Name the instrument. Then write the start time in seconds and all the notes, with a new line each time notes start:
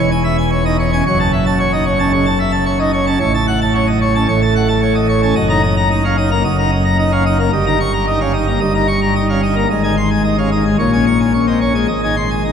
pipe organ
Already playing: E1 E2
0.11 G#5
0.24 E5
0.38 G#5
0.52 C#5
0.65 D#4 D#5
0.79 C#5
0.92 C#4 G#5
1.06 F#1 F#2 C#5
1.19 A5
1.33 E5
1.46 A5
1.60 C#5
1.73 D#4 D#5
1.86 C#5
1.99 C#4 A5
2.13 C#3 C#5
2.26 A5
2.39 E5
2.52 A5
2.66 C#5
2.79 D#4 D#5
2.93 C#5
3.07 C#4 A5
3.20 A1 A2 C#5
3.34 A5
3.47 F#5
3.61 A5
3.75 C#5
3.87 D#5
4.02 C#5
4.15 C#4 A5
4.28 A1 A2 C#5
4.42 A5
4.55 F#5
4.68 A5
4.82 C#5
4.95 D#5
5.09 C#5
5.22 C#4 A5
5.35 F#1 F#2 D#5
5.49 D#4 A#5
5.63 D#5
5.77 A#5
5.91 D#4 D#5
6.04 C#4 F5
6.18 D#4 D#5
6.31 A#3 A#5
6.44 F#1 F#2 D#5
6.58 D#4 A#5
6.71 D#5
6.85 A#5
6.99 D#4 D#5
7.12 C#4 F5
7.26 D#4 D#5
7.39 A#3 A#5
7.53 G1 G2 D#5
7.66 D#4 A#5
7.80 C#6
7.93 A#5
8.07 D#4 D#5
8.21 C#4 F5
8.33 D#4 D#5
8.47 A#3 A#5
8.60 G1 G2 D#5
8.74 D#4 A#5
8.87 C#6
9.02 A#5
9.15 D#4 D#5
9.29 C#4 F5
9.43 D#4 D#5
9.56 A#3 A#5
9.70 G#1 G#2 D#5
9.84 D#4 G#5
9.97 C6
10.11 G#5
10.24 D#4 D#5
10.38 C#4 F5
10.52 D#4 D#5
10.65 G#3 G#5
10.79 A#1 A#2 C#5
10.93 C#4 G#5
11.06 C#6
11.20 G#5
11.33 C#4 C#5
11.47 C4 D#5
11.61 C#4 C#5
11.74 G#3 G#5
11.88 G#1 G#2 D#5
12.03 D#4 G#5
12.16 C6
12.30 G#5
12.44 D#4 D#5